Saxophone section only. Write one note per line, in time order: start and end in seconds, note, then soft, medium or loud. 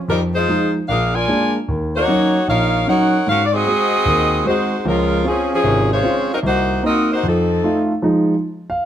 0.09 0.20 G3 medium
0.09 0.20 C4 medium
0.09 0.21 D#4 medium
0.09 0.21 A#4 medium
0.35 0.72 G#3 medium
0.35 0.72 D#4 medium
0.35 0.72 F4 medium
0.35 0.72 C5 loud
0.88 1.12 D4 medium
0.88 1.13 G#4 medium
0.88 1.12 A#4 medium
0.88 1.12 F5 medium
1.14 1.54 F4 medium
1.14 1.54 A#4 medium
1.14 1.54 D5 medium
1.14 1.54 G#5 medium
1.95 2.44 A#3 medium
1.95 2.44 D#4 medium
1.95 2.44 F#4 medium
1.95 2.44 C#5 loud
2.48 2.85 D#4 medium
2.48 2.85 A#4 medium
2.48 2.85 C#5 medium
2.48 2.85 F5 loud
2.88 3.25 D#4 medium
2.88 3.25 A#4 medium
2.88 3.24 C#5 medium
2.88 3.25 F#5 medium
3.28 3.43 C#4 medium
3.28 3.43 F#4 medium
3.28 3.43 A#4 medium
3.28 3.43 F5 loud
3.45 3.53 D5 medium
3.54 4.46 C4 loud
3.54 4.46 F#4 medium
3.54 4.46 G#4 medium
3.54 4.46 D#5 loud
4.47 4.84 G#3 medium
4.47 4.83 D#4 medium
4.47 4.84 F#4 medium
4.47 4.83 C5 medium
4.88 5.26 G#3 medium
4.88 5.26 C#4 medium
4.88 5.26 F4 medium
4.88 5.26 A#4 medium
5.27 5.50 F3 medium
5.27 5.50 C4 medium
5.27 5.50 C#4 medium
5.27 5.50 G#4 medium
5.53 5.89 F3 medium
5.53 5.89 C4 medium
5.53 5.89 C#4 medium
5.53 5.89 G#4 medium
5.92 6.28 G#3 medium
5.92 6.28 F4 medium
5.92 6.29 C5 medium
5.92 6.29 C#5 medium
6.33 6.39 F#3 medium
6.33 6.38 C4 medium
6.33 6.38 D#4 medium
6.33 6.39 A#4 medium
6.46 6.82 A#3 medium
6.46 6.82 D#4 medium
6.46 6.82 F#4 medium
6.46 6.82 C5 medium
6.86 7.09 C4 medium
6.86 7.09 F#4 medium
6.86 7.09 A#4 medium
6.86 7.09 D#5 medium
7.13 7.25 A#3 medium
7.13 7.25 D#4 medium
7.13 7.25 F#4 medium
7.13 7.25 C5 medium
7.27 7.87 F3 medium
7.27 7.87 C4 medium
7.27 7.87 D#4 medium
7.27 7.87 A4 medium